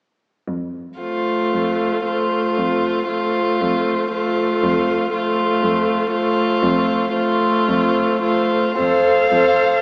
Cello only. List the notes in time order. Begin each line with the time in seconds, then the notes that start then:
0.48 F2
1.54 F2
2.58 F2
3.61 F2
4.63 F2
5.63 F2
6.63 F2
7.68 F2
8.79 F2
9.31 F2